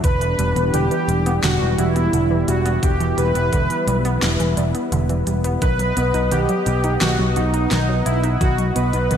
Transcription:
0.00 0.33 E1 loud
0.00 0.20 D3 medium
0.00 5.58 E3 medium
0.00 5.58 G3 medium
0.00 9.17 B3 medium
0.00 2.79 D4 medium
0.00 kick loud
0.00 closed hi-hat medium
0.04 0.76 B4 loud
0.21 0.30 E3 medium
0.21 closed hi-hat soft
0.39 0.53 E1 loud
0.39 0.55 G3 medium
0.39 closed hi-hat medium
0.56 0.71 E1 medium
0.56 0.71 B3 medium
0.56 closed hi-hat soft
0.73 0.88 E1 medium
0.73 0.89 D3 loud
0.73 1.39 G4 loud
0.73 closed hi-hat medium
0.91 1.08 E3 medium
0.91 closed hi-hat soft
1.08 1.38 E1 medium
1.08 1.25 G3 medium
1.08 closed hi-hat medium
1.26 1.43 B3 loud
1.26 closed hi-hat medium
1.43 1.58 E1 medium
1.43 1.60 D3 medium
1.43 1.79 F#4 medium
1.43 snare loud
1.43 closed hi-hat medium
1.61 1.75 E1 medium
1.61 1.70 E3 medium
1.78 2.07 E1 loud
1.78 1.95 G3 medium
1.78 2.50 E4 loud
1.78 closed hi-hat medium
1.96 2.11 B3 medium
1.96 closed hi-hat medium
2.13 2.42 E1 medium
2.13 2.28 D3 loud
2.13 closed hi-hat medium
2.31 2.47 E3 medium
2.48 2.77 E1 loud
2.48 2.65 G3 medium
2.48 2.84 F#4 medium
2.48 closed hi-hat medium
2.66 2.82 B3 loud
2.66 closed hi-hat medium
2.83 3.12 E1 medium
2.83 3.00 D3 medium
2.83 5.59 E4 medium
2.83 3.19 G4 medium
2.83 kick loud
2.83 closed hi-hat medium
3.00 3.09 E3 medium
3.00 closed hi-hat soft
3.18 3.32 E1 medium
3.18 3.34 G3 medium
3.18 4.53 B4 loud
3.18 closed hi-hat medium
3.35 3.50 E1 medium
3.35 3.50 B3 medium
3.35 closed hi-hat medium
3.53 3.67 E1 medium
3.53 3.67 D3 loud
3.53 kick medium
3.53 closed hi-hat medium
3.70 3.87 E3 medium
3.70 closed hi-hat soft
3.87 4.17 B1 medium
3.87 4.04 G3 medium
3.87 closed hi-hat medium
4.05 4.22 B3 loud
4.05 closed hi-hat medium
4.22 4.37 E1 medium
4.22 4.39 D3 medium
4.22 snare loud
4.22 closed hi-hat medium
4.40 4.54 E1 medium
4.40 4.49 E3 medium
4.40 closed hi-hat soft
4.57 4.72 E1 loud
4.57 4.74 G3 medium
4.57 closed hi-hat medium
4.75 4.90 B3 medium
4.75 closed hi-hat medium
4.92 5.21 E1 medium
4.92 5.07 D3 loud
4.92 closed hi-hat medium
5.09 5.26 E3 medium
5.09 closed hi-hat soft
5.27 5.56 E1 medium
5.27 5.44 G3 medium
5.27 closed hi-hat medium
5.44 5.61 B3 loud
5.44 closed hi-hat medium
5.62 5.91 B1 loud
5.62 5.78 D#3 medium
5.62 6.34 B4 loud
5.62 9.17 D#5 medium
5.62 9.17 F#5 medium
5.62 kick loud
5.62 closed hi-hat medium
5.79 5.88 F#3 medium
5.79 closed hi-hat soft
5.97 6.11 B1 loud
5.97 6.13 B3 medium
5.97 closed hi-hat medium
6.14 6.29 B1 medium
6.14 6.29 D#4 medium
6.14 closed hi-hat soft
6.32 6.46 B1 medium
6.32 6.47 D#3 loud
6.32 7.04 G4 loud
6.32 closed hi-hat medium
6.49 6.66 F#3 medium
6.49 closed hi-hat soft
6.66 6.96 B1 medium
6.66 6.83 B3 medium
6.66 closed hi-hat medium
6.84 7.01 D#4 loud
6.84 closed hi-hat medium
7.01 7.16 B1 medium
7.01 7.18 D#3 medium
7.01 7.37 F#4 loud
7.01 snare loud
7.01 closed hi-hat medium
7.19 7.34 B1 loud
7.19 7.28 F#3 medium
7.36 7.66 B1 loud
7.36 7.53 B3 medium
7.36 8.08 D#4 loud
7.36 closed hi-hat medium
7.54 7.69 D#4 medium
7.54 closed hi-hat medium
7.71 8.01 B1 medium
7.71 7.86 D#3 loud
7.71 snare medium
7.71 closed hi-hat medium
7.89 8.05 F#3 medium
8.05 8.36 B1 medium
8.05 8.23 B3 medium
8.05 8.42 E4 medium
8.05 closed hi-hat medium
8.24 8.40 D#4 loud
8.24 closed hi-hat medium
8.41 8.70 B1 medium
8.41 8.58 D#3 medium
8.41 8.55 F#4 loud
8.41 kick loud
8.41 closed hi-hat medium
8.58 8.67 F#3 medium
8.58 closed hi-hat soft
8.75 8.91 B1 medium
8.75 8.92 B3 medium
8.75 9.17 B4 loud
8.75 closed hi-hat medium
8.93 9.08 B1 medium
8.93 9.08 D#4 medium
8.93 closed hi-hat soft
9.11 9.17 B1 medium
9.11 9.17 D#3 loud
9.11 closed hi-hat medium

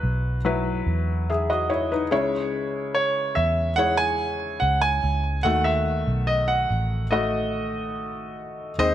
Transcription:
0.00 0.83 B1 medium
0.00 0.37 F#3 medium
0.00 0.37 E4 medium
0.00 0.37 B4 medium
0.00 0.82 B4 medium
0.45 2.03 F#3 medium
0.45 1.29 E4 medium
0.45 1.29 B4 medium
0.86 2.11 E2 medium
1.30 1.49 G#4 medium
1.30 1.49 E5 medium
1.50 1.70 F#4 medium
1.50 1.69 D#5 medium
1.70 1.90 E4 medium
1.70 1.90 C#5 medium
1.92 2.31 D#4 soft
1.92 2.31 B4 medium
2.11 3.33 C#2 medium
2.11 3.33 C#3 medium
2.11 3.70 G#3 medium
2.11 3.70 E4 medium
2.11 3.70 C#5 medium
2.95 3.38 C#5 medium
3.35 4.58 E2 medium
3.35 3.79 E5 medium
3.76 5.37 G#3 medium
3.76 5.37 E4 medium
3.76 5.37 C#5 medium
3.76 3.99 F#5 loud
3.97 4.63 G#5 loud
4.60 5.01 C#2 medium
4.60 4.80 F#5 medium
4.82 5.47 G#5 loud
5.04 5.42 C#2 medium
5.43 6.04 D#2 medium
5.43 6.66 D#3 medium
5.43 7.03 A3 medium
5.43 7.03 F#4 medium
5.43 5.66 F#5 loud
5.43 7.04 F#5 medium
5.64 6.30 E5 medium
6.07 6.66 B1 medium
6.27 6.49 D#5 medium
6.48 7.07 F#5 medium
6.70 8.75 A1 medium
7.11 8.70 A3 medium
7.11 8.70 F#4 medium
7.11 8.32 D#5 medium
7.11 8.71 D#5 medium
8.78 8.95 D#2 medium
8.78 8.95 D#3 medium
8.78 8.95 G#3 medium
8.78 8.95 C4 medium
8.78 8.95 C5 medium
8.78 8.95 D#5 loud

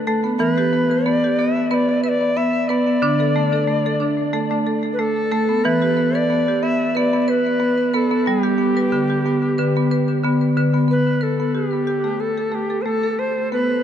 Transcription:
0.07 0.36 A3 loud
0.07 0.25 A4 medium
0.24 0.38 B3 medium
0.39 0.97 E3 loud
0.39 0.57 B3 medium
0.39 0.52 A#4 loud
0.52 1.08 B4 loud
0.58 0.73 G4 medium
0.73 0.90 B3 medium
0.91 1.06 B4 medium
1.06 1.38 B3 medium
1.06 1.41 D5 loud
1.24 1.38 G4 medium
1.39 1.70 B3 medium
1.39 1.70 E5 medium
1.70 1.88 B3 medium
1.70 1.88 B4 medium
1.70 1.75 E5 medium
1.74 2.03 D5 medium
1.89 2.04 B3 medium
2.04 2.36 B4 medium
2.04 2.10 E5 medium
2.09 2.38 D5 medium
2.37 2.65 B3 medium
2.37 2.70 E5 loud
2.68 2.86 B3 loud
2.68 2.87 B4 medium
2.68 4.65 D5 medium
2.87 3.02 B3 medium
3.02 3.60 D3 loud
3.02 3.20 D4 medium
3.20 3.35 A4 medium
3.36 3.53 A3 medium
3.53 3.68 A4 medium
3.67 3.85 A3 medium
3.86 4.01 A4 medium
4.00 4.33 D4 medium
4.33 4.50 A3 medium
4.33 4.51 A4 medium
4.51 4.66 A3 medium
4.67 4.99 A4 medium
4.93 5.01 B4 medium
4.99 5.28 A3 medium
4.99 5.66 A4 loud
5.31 5.61 A3 loud
5.31 5.49 A4 medium
5.49 5.63 B3 medium
5.64 6.22 E3 loud
5.64 5.82 B3 medium
5.64 6.18 B4 loud
5.82 5.97 G4 medium
5.97 6.14 B3 medium
6.15 6.30 B4 medium
6.15 6.64 D5 loud
6.30 6.48 B3 medium
6.48 6.63 G4 medium
6.63 6.95 B3 medium
6.63 6.89 E5 loud
6.89 6.99 E5 medium
6.95 7.12 B3 medium
6.95 7.13 B4 medium
6.95 7.22 D5 medium
7.13 7.28 B3 medium
7.22 7.31 D5 medium
7.28 7.61 B4 medium
7.28 7.97 B4 loud
7.60 7.93 B3 medium
7.94 8.10 B3 loud
7.94 8.30 A4 medium
7.94 8.11 B4 medium
8.11 8.25 B3 medium
8.26 8.85 G3 loud
8.26 8.44 B3 medium
8.26 10.24 G4 loud
8.43 8.59 G4 medium
8.58 8.76 B3 medium
8.77 8.92 B4 medium
8.92 9.50 D3 medium
8.92 9.10 B3 medium
9.10 9.25 G4 medium
9.26 9.58 B3 medium
9.58 10.16 D3 medium
9.58 9.76 B4 medium
9.77 9.91 B3 medium
9.91 10.24 B4 medium
10.24 10.52 D3 medium
10.24 10.57 B3 medium
10.57 10.85 D3 medium
10.57 10.74 B4 medium
10.74 10.87 B3 medium
10.88 11.21 B3 medium
10.88 11.24 B4 medium
11.21 11.57 A4 medium
11.21 11.39 B4 medium
11.40 11.55 B3 medium
11.55 11.72 G4 medium
11.55 12.22 G4 medium
11.73 11.88 B3 medium
11.87 12.05 G4 medium
12.04 12.38 A3 medium
12.20 12.56 A4 medium
12.38 12.53 A4 medium
12.52 12.71 A3 medium
12.52 12.83 G4 medium
12.70 12.86 A4 medium
12.82 13.04 A3 medium
12.82 13.20 A4 medium
12.82 12.87 C5 medium
13.03 13.19 A4 medium
13.19 13.52 A3 medium
13.19 13.52 C5 medium
13.52 13.83 B3 medium
13.52 13.83 B4 medium

